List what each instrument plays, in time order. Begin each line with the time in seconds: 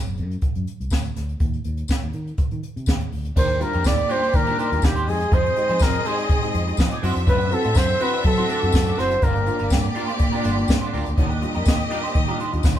0.06 fingered electric bass F#1, closed hi-hat
0.17 fingered electric bass F#2, closed hi-hat
0.31 closed hi-hat
0.41 kick, closed hi-hat
0.55 fingered electric bass F#2, closed hi-hat
0.67 closed hi-hat
0.80 fingered electric bass C2, closed hi-hat
0.90 fingered electric bass D2, kick, snare, tambourine
1.04 closed hi-hat
1.16 fingered electric bass D2, snare, closed hi-hat
1.29 closed hi-hat
1.40 fingered electric bass D#2, kick, closed hi-hat
1.53 closed hi-hat
1.64 fingered electric bass D#2, closed hi-hat
1.77 closed hi-hat
1.88 kick, snare, tambourine
2.02 fingered electric bass D#2, closed hi-hat
2.13 fingered electric bass D#3, closed hi-hat
2.27 closed hi-hat
2.38 muted fingered electric bass stroke, kick, closed hi-hat
2.51 fingered electric bass D#3, closed hi-hat
2.63 closed hi-hat
2.76 fingered electric bass C3, closed hi-hat
2.86 fingered electric bass D#2, kick, snare, tambourine
3.00 closed hi-hat
3.12 fingered electric bass D2, open hi-hat
3.25 closed hi-hat
3.36 fingered electric bass D#2, grand piano D#3, string section A#3 G4 D5, clean electric guitar D4 G4 A#4, flugelhorn C5, kick, crash
3.49 muted clean electric guitar stroke, closed hi-hat
3.59 grand piano G3 D4 F4, flugelhorn A#4, muted clean electric guitar stroke, closed hi-hat
3.73 fingered electric bass F2, grand piano D4 F4, clean electric guitar D4 G4 A#4, closed hi-hat
3.84 fingered electric bass D#2, grand piano D#3, flugelhorn D5, muted clean electric guitar stroke, kick, snare, tambourine
3.98 muted clean electric guitar stroke, closed hi-hat
4.09 grand piano G3 D4 F4, clean electric guitar D4 G4 A#4, flugelhorn C5, closed hi-hat
4.22 grand piano D4 F4, clean electric guitar D4 G4 C5, closed hi-hat
4.33 fingered electric bass D#3, flugelhorn A#4, muted clean electric guitar stroke, kick, closed hi-hat
4.46 grand piano G3 D4 F4, clean electric guitar D4 G4 A#4, closed hi-hat
4.58 grand piano D#3, clean electric guitar D4 G4 C5, flugelhorn A#4, closed hi-hat
4.71 fingered electric bass D#2, grand piano G3 D4 F4, muted clean electric guitar stroke, closed hi-hat
4.82 fingered electric bass D#2, grand piano D#3, flugelhorn G4, muted clean electric guitar stroke, kick, snare, tambourine
4.96 clean electric guitar D4 G4 C5, closed hi-hat
5.07 fingered electric bass F2, grand piano G#3 D#4 G4, string section C4 G#4 D#5, flugelhorn G#4, muted clean electric guitar stroke, open hi-hat
5.21 grand piano D#4 G4, muted clean electric guitar stroke, closed hi-hat
5.32 fingered electric bass F2, grand piano F3, clean electric guitar D#4 G#4 C5, flugelhorn C5, kick, closed hi-hat
5.45 muted clean electric guitar stroke, closed hi-hat
5.56 grand piano G#3 D#4 G4, muted clean electric guitar stroke, closed hi-hat
5.69 fingered electric bass F3, grand piano D#4 G4, clean electric guitar D#4 G#4 C5, closed hi-hat
5.79 fingered electric bass F2, grand piano F3, flugelhorn A#4, muted clean electric guitar stroke, kick, snare, tambourine
5.94 muted clean electric guitar stroke, closed hi-hat
6.05 grand piano G#3 D#4 G4, clean electric guitar D#4 G#4 C5, flugelhorn G#4, closed hi-hat
6.18 grand piano D#4 G4, clean electric guitar D#4 G#4 D5, closed hi-hat
6.29 muted clean electric guitar stroke, kick, closed hi-hat
6.42 grand piano G#3 D#4 G4, muted clean electric guitar stroke, closed hi-hat
6.53 fingered electric bass F2, grand piano F3, closed hi-hat
6.65 grand piano G#3 D#4 G4, muted clean electric guitar stroke, closed hi-hat
6.77 grand piano F3, fingered electric bass F3, muted clean electric guitar stroke, kick, snare, tambourine
6.91 clean electric guitar D#4 G#4 D5, closed hi-hat
7.02 fingered electric bass F#2, grand piano C4 E4 F#4, string section C4 A4 E5, clean electric guitar D4 F#4 C5, open hi-hat
7.16 fingered electric bass F2, grand piano E4 F#4, muted clean electric guitar stroke, closed hi-hat
7.27 fingered electric bass F#2, grand piano D3 A3, clean electric guitar D4 F#4 C5, flugelhorn B4, kick, closed hi-hat
7.40 muted clean electric guitar stroke, closed hi-hat
7.51 grand piano C4 E4 F#4, flugelhorn A4, muted clean electric guitar stroke, closed hi-hat
7.64 fingered electric bass A2, clean electric guitar D4 F#4 C5, grand piano E4 F#4, closed hi-hat
7.75 fingered electric bass F#2, grand piano D3 A3, flugelhorn C5, muted clean electric guitar stroke, kick, snare, tambourine
7.89 muted clean electric guitar stroke, closed hi-hat
8.00 grand piano C4 E4 F#4, clean electric guitar D4 F#4 C5, flugelhorn B4, closed hi-hat
8.13 clean electric guitar D4 F#4 D5, grand piano E4 F#4, closed hi-hat
8.23 fingered electric bass F#3, flugelhorn A4, muted clean electric guitar stroke, kick, closed hi-hat
8.37 grand piano C4 E4 F#4, clean electric guitar D4 F#4 C5, closed hi-hat
8.49 grand piano D3 A3, clean electric guitar D4 F#4 D5, flugelhorn A4, closed hi-hat
8.61 fingered electric bass F#2, grand piano C4 E4 F#4, muted clean electric guitar stroke, closed hi-hat
8.72 fingered electric bass F#2, grand piano E4 F#4, muted clean electric guitar stroke, kick, snare, tambourine
8.86 grand piano D3 A3, clean electric guitar D4 F#4 D5, closed hi-hat
8.98 fingered electric bass F#1, grand piano C4 E4 F#4, clean electric guitar D4 F#4 C5, flugelhorn C5, snare, open hi-hat
9.11 muted clean electric guitar stroke, closed hi-hat
9.22 fingered electric bass G1, grand piano G2 D3, string section A#3 G4 D5, clean electric guitar D4 F4 A#4, flugelhorn A#4, kick, closed hi-hat
9.35 muted clean electric guitar stroke, closed hi-hat
9.46 grand piano A#3 D4 F4, muted clean electric guitar stroke, closed hi-hat
9.59 fingered electric bass G1, grand piano D4 F4, clean electric guitar D4 F4 A#4, closed hi-hat
9.70 fingered electric bass G2, grand piano G2 D3, muted clean electric guitar stroke, kick, snare, tambourine
9.84 muted clean electric guitar stroke, closed hi-hat
9.95 grand piano A#3 D4 F4, clean electric guitar D4 F4 A#4, closed hi-hat
10.08 grand piano D4 F4, clean electric guitar D4 F4 C5, closed hi-hat
10.19 muted clean electric guitar stroke, kick, closed hi-hat
10.32 grand piano A#3 D4 F4, clean electric guitar D4 F4 A#4, closed hi-hat
10.44 fingered electric bass G1, grand piano G2 D3, clean electric guitar D4 F4 C5, closed hi-hat
10.56 grand piano A#3 D4 F4, muted clean electric guitar stroke, closed hi-hat
10.68 grand piano G2 D3, fingered electric bass G2, muted clean electric guitar stroke, kick, snare, tambourine
10.81 clean electric guitar D4 F4 C5, closed hi-hat
10.92 fingered electric bass D2, grand piano A#3 D4 F4, clean electric guitar D4 F4 A#4, open hi-hat
11.06 fingered electric bass D2, grand piano D4 F4, muted clean electric guitar stroke, closed hi-hat
11.17 fingered electric bass D#2, grand piano D#3, string section A#3 G4 D#5, clean electric guitar D4 G4 A#4, kick, closed hi-hat
11.31 muted clean electric guitar stroke, closed hi-hat
11.41 grand piano G3 D4 F4, muted clean electric guitar stroke, closed hi-hat
11.54 fingered electric bass F2, grand piano D4 F4, clean electric guitar D4 G4 A#4, closed hi-hat
11.65 fingered electric bass D#2, grand piano D#3, muted clean electric guitar stroke, kick, snare, tambourine
11.79 muted clean electric guitar stroke, closed hi-hat
11.90 grand piano G3 D4 F4, clean electric guitar D4 G4 A#4, closed hi-hat
12.03 grand piano D4 F4, clean electric guitar D4 G4 C5, closed hi-hat
12.14 fingered electric bass D#3, muted clean electric guitar stroke, kick, closed hi-hat
12.27 grand piano G3 D4 F4, clean electric guitar D4 G4 A#4, closed hi-hat
12.40 grand piano D#3, clean electric guitar D4 G4 C5, closed hi-hat
12.52 fingered electric bass D#2, grand piano G3 D4 F4, muted clean electric guitar stroke, closed hi-hat
12.63 fingered electric bass D#2, grand piano D#3, muted clean electric guitar stroke, kick, snare, tambourine